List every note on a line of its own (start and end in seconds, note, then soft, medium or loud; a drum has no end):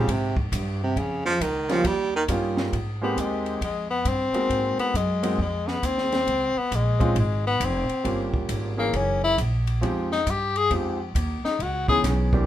0.00 0.13 C#3 medium
0.08 0.50 G#2 medium
0.08 0.38 C3 medium
0.08 kick soft
0.08 ride medium
0.36 0.54 D#2 soft
0.36 kick medium
0.52 0.94 G2 loud
0.52 0.82 G2 medium
0.52 kick soft
0.52 hi-hat pedal medium
0.52 ride medium
0.83 1.00 C3 loud
0.96 1.39 F2 medium
0.96 1.25 C#3 medium
0.96 kick soft
0.96 ride medium
1.25 1.44 F3 loud
1.25 snare soft
1.40 1.83 C#2 medium
1.40 1.70 D#3 medium
1.40 kick soft
1.40 hi-hat pedal soft
1.40 ride medium
1.69 1.88 F3 loud
1.69 1.83 G3 medium
1.69 1.83 A#3 medium
1.69 1.83 C#4 medium
1.69 1.83 D#4 medium
1.69 1.83 F4 medium
1.69 snare soft
1.69 ride soft
1.84 2.27 D#2 medium
1.84 2.14 G3 loud
1.84 kick soft
1.84 ride medium
2.16 2.24 D#3 medium
2.28 2.71 G2 loud
2.28 2.73 G3 medium
2.28 2.73 A#3 medium
2.28 2.73 C#4 medium
2.28 2.73 D#4 medium
2.28 2.74 F4 medium
2.28 kick soft
2.28 hi-hat pedal medium
2.28 ride medium
2.57 snare medium
2.73 3.16 G#2 medium
2.73 kick soft
2.73 ride medium
3.01 3.58 G#3 medium
3.01 3.58 A#3 medium
3.01 3.22 B3 medium
3.01 3.59 C4 medium
3.01 3.59 D#4 medium
3.01 3.59 G4 medium
3.16 3.60 D#2 medium
3.16 3.63 G#3 medium
3.16 kick soft
3.16 hi-hat pedal medium
3.16 ride medium
3.46 ride soft
3.61 4.04 F2 medium
3.61 3.90 G#3 medium
3.61 kick soft
3.61 ride medium
3.90 4.10 B3 loud
4.05 4.32 G2 medium
4.05 4.79 C4 loud
4.05 kick soft
4.05 hi-hat pedal medium
4.05 ride medium
4.32 4.91 G#3 medium
4.32 4.91 A#3 medium
4.32 4.91 C4 medium
4.32 4.91 D#4 medium
4.32 4.91 F#4 medium
4.32 muted upright bass stroke soft
4.32 ride soft
4.49 4.76 G#2 medium
4.49 kick soft
4.49 ride medium
4.78 4.98 B3 medium
4.78 muted upright bass stroke soft
4.78 ride soft
4.94 5.37 F#2 medium
4.94 5.40 G#3 medium
4.94 kick soft
4.94 hi-hat pedal medium
4.94 ride medium
5.23 5.37 G#3 medium
5.23 5.37 A#3 medium
5.23 5.37 C4 medium
5.23 5.37 D#4 medium
5.23 5.37 F#4 medium
5.23 ride medium
5.38 5.82 F2 medium
5.38 5.70 G#3 medium
5.38 kick soft
5.68 5.87 B3 medium
5.68 snare soft
5.82 6.26 D#2 medium
5.82 6.59 C4 loud
5.82 kick soft
5.82 hi-hat pedal medium
5.82 ride medium
5.98 snare soft
6.12 snare soft
6.12 ride soft
6.27 6.54 C#2 medium
6.27 kick soft
6.27 ride medium
6.56 6.77 B3 medium
6.56 muted upright bass stroke soft
6.71 7.15 A#1 medium
6.71 kick soft
6.71 hi-hat pedal medium
6.71 ride medium
6.76 7.18 G#3 medium
6.99 7.14 G#3 medium
6.99 7.14 C4 medium
6.99 7.14 C#4 medium
6.99 7.14 D#4 medium
6.99 7.14 F4 medium
6.99 kick medium
6.99 ride soft
7.16 7.59 G#1 loud
7.16 7.45 G#3 medium
7.16 kick soft
7.16 ride medium
7.47 7.66 B3 loud
7.60 7.87 F1 loud
7.60 kick soft
7.60 hi-hat pedal medium
7.60 ride medium
7.65 8.36 C4 medium
7.89 muted upright bass stroke soft
7.89 ride soft
8.04 8.48 G1 medium
8.04 8.72 G3 medium
8.04 8.72 A#3 medium
8.04 8.72 C#4 medium
8.04 8.72 F4 medium
8.04 8.73 G4 medium
8.04 kick soft
8.04 ride medium
8.34 kick soft
8.49 8.92 G#1 medium
8.49 kick soft
8.49 hi-hat pedal medium
8.49 ride medium
8.77 9.34 E3 medium
8.77 9.34 A#3 medium
8.77 8.98 A#3 medium
8.77 9.34 C#4 medium
8.77 9.35 D#4 medium
8.77 9.35 G#4 medium
8.93 9.36 F#1 medium
8.93 9.23 C#4 medium
8.93 kick soft
8.93 ride medium
9.24 9.38 E4 loud
9.38 9.81 A#1 medium
9.38 kick soft
9.38 hi-hat pedal medium
9.38 ride medium
9.67 ride medium
9.81 10.25 F2 medium
9.81 10.08 F3 medium
9.81 10.08 G#3 medium
9.81 10.08 C4 medium
9.81 10.08 D#4 medium
9.81 10.08 G4 medium
9.81 kick soft
9.81 ride medium
10.12 10.32 D#4 medium
10.12 snare soft
10.26 10.69 G2 medium
10.26 kick soft
10.26 hi-hat pedal medium
10.26 ride medium
10.30 10.58 G4 medium
10.56 10.71 G#4 loud
10.56 ride soft
10.70 11.14 F2 medium
10.70 10.96 F3 medium
10.70 10.97 G#3 medium
10.70 10.97 C4 medium
10.70 10.97 D#4 medium
10.70 10.97 G4 medium
10.70 kick soft
10.70 ride medium
11.15 11.42 D#2 loud
11.15 kick soft
11.15 hi-hat pedal medium
11.15 ride medium
11.43 11.63 D#4 medium
11.43 muted upright bass stroke soft
11.43 snare soft
11.59 12.02 C#2 medium
11.59 11.88 F#4 medium
11.59 kick soft
11.59 ride medium
11.88 12.29 E3 medium
11.88 12.30 B3 medium
11.88 12.30 C#4 medium
11.88 12.30 D#4 medium
11.88 12.03 G#4 loud
11.88 12.30 G#4 medium
11.88 kick medium
12.04 12.46 B1 medium
12.04 kick soft
12.04 snare soft
12.04 hi-hat pedal medium
12.04 ride medium
12.33 12.46 E3 medium
12.33 12.46 A#3 medium
12.33 12.46 C4 medium
12.33 12.46 D4 medium
12.33 12.46 G4 medium
12.33 kick medium